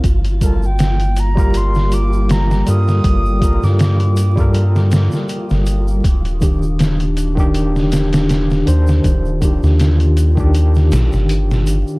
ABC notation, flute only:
X:1
M:4/4
L:1/16
Q:"Swing 16ths" 1/4=80
K:Gm
V:1 name="Flute"
z2 a g3 b2 c'2 d'2 b2 e'2- | e'3 d' d'4 z8 | z16 | z16 |]